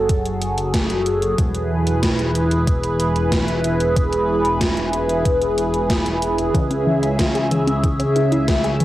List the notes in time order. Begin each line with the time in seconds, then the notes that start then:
Already playing: F#1 F#3 F#4 G#4 A4
0.09 kick, closed hi-hat
0.25 closed hi-hat
0.42 closed hi-hat
0.58 closed hi-hat
0.74 kick, snare, closed hi-hat
0.90 closed hi-hat
1.06 closed hi-hat
1.22 closed hi-hat
1.38 E1 E3 E4 B4, kick, closed hi-hat
1.55 closed hi-hat
1.87 closed hi-hat
2.03 kick, snare, closed hi-hat
2.19 closed hi-hat
2.35 closed hi-hat
2.51 closed hi-hat
2.67 kick, closed hi-hat
2.84 closed hi-hat
3.00 closed hi-hat
3.16 closed hi-hat
3.32 kick, snare, closed hi-hat
3.48 closed hi-hat
3.64 closed hi-hat
3.80 closed hi-hat
3.96 kick, closed hi-hat
4.13 closed hi-hat
4.45 closed hi-hat
4.61 kick, snare, closed hi-hat
4.77 closed hi-hat
4.93 closed hi-hat
5.09 closed hi-hat
5.25 kick, closed hi-hat
5.42 closed hi-hat
5.58 closed hi-hat
5.74 closed hi-hat
5.90 kick, snare, closed hi-hat
6.06 closed hi-hat
6.22 closed hi-hat
6.38 closed hi-hat
6.54 C#2 C#3 E3 C#4 E5, kick, closed hi-hat
6.70 C#4, closed hi-hat
6.87 E3
7.03 E4, closed hi-hat
7.19 E3, kick, snare, closed hi-hat
7.35 G#4, closed hi-hat
7.51 E3, closed hi-hat
7.67 C#4, closed hi-hat
7.83 E3, kick, closed hi-hat
7.99 C#4, closed hi-hat
8.16 E3, closed hi-hat
8.32 E4, closed hi-hat
8.48 E3, kick, snare, closed hi-hat
8.64 G#4, closed hi-hat
8.80 E3, closed hi-hat